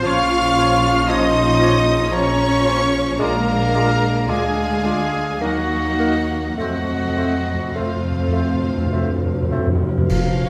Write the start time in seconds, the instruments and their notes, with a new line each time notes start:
0.03 double bass section A#1, timpani A#2, bassoon F3, viola section F3 C#4, french horn section F3 C#4, clarinet F4, cello section F4, oboe C#5, violin section F5 F6, trumpet section F5, flute C#6
0.56 bassoon F3, clarinet F4, oboe C#5
1.06 bassoon F3, cello section D#4, clarinet F4, violin section D#5 D#6, trumpet section D#5, flute C6
1.11 oboe C#5
1.59 bassoon F3, clarinet F4, oboe C#5
2.10 bassoon F3, french horn section F3 C#4, viola section F3 C#4, cello section C#4, clarinet F4, violin section C#5 C#6, oboe C#5, trumpet section C#5, flute A#5
2.65 bassoon F3, clarinet F4, oboe C#5
3.19 double bass section A#1, bassoon G#3, viola section G#3 D4, french horn section G#3 D4, cello section A#3, clarinet F4, violin section A#4 A#5, trumpet section A#4, oboe D5, flute F5
3.74 bassoon G#3, clarinet F4, oboe D5
4.27 double bass section D2, french horn section G#3 D4, bassoon G#3, cello section G#3, viola section G#3 D4, clarinet F4, violin section G#4 G#5, trumpet section G#4, oboe D5, flute F5
4.85 bassoon G#3, clarinet F4, oboe D5
5.40 double bass section D#2, cello section F#3, french horn section A#3 D#4, bassoon A#3, viola section A#3 D#4, clarinet D#4, violin section F#4 F#5, trumpet section F#4, oboe A#4, flute D#5
5.99 bassoon A#3, clarinet D#4, oboe A#4
6.57 double bass section F2, timpani F2, cello section F#3, bassoon A3, french horn section A3 C4, viola section A3 C4, clarinet C4, violin section F#4 F#5, trumpet section F#4, oboe C5, flute D#5
6.67 timpani F2
6.75 timpani F2
6.83 timpani F2
6.92 timpani F2
7.00 timpani F2
7.07 timpani F2
7.15 timpani F2, bassoon A3, clarinet C4, oboe C5
7.24 timpani F2
7.31 timpani F2
7.39 timpani F2
7.47 timpani F2
7.54 timpani F2
7.62 timpani F2
7.71 timpani F2, cello section F3, bassoon A3, violin section F5
7.76 timpani F2, french horn section A3 C4, viola section A3 C4, clarinet C4, violin section F4, trumpet section F4, flute C5, oboe C5
7.88 timpani F2
7.96 timpani F2
8.03 timpani F2
8.11 timpani F2
8.19 timpani F2
8.28 timpani F2
8.32 timpani F2, bassoon A3, clarinet C4, oboe C5
8.45 timpani F2
8.54 timpani F2
8.61 timpani F2
8.70 timpani F2
8.78 timpani F2
8.86 timpani F2
8.93 timpani F2, bassoon A3, clarinet C4, oboe C5
9.03 timpani F2
9.10 timpani F2
9.18 timpani F2
9.26 timpani F2
9.34 timpani F2
9.43 timpani F2
9.50 timpani F2, bassoon A3, clarinet C4, oboe C5
9.58 timpani F2
9.67 timpani F2
9.75 timpani F2
9.82 timpani F2
9.89 timpani F2
9.98 timpani F2
10.08 double bass section A#1, cello section A#2, timpani A#2, bassoon F3, french horn section F3, viola section A#3 A#4, clarinet C#4, oboe A#4, violin section F5, flute F5, concert bass drum, crash
10.39 viola section C#4 C#5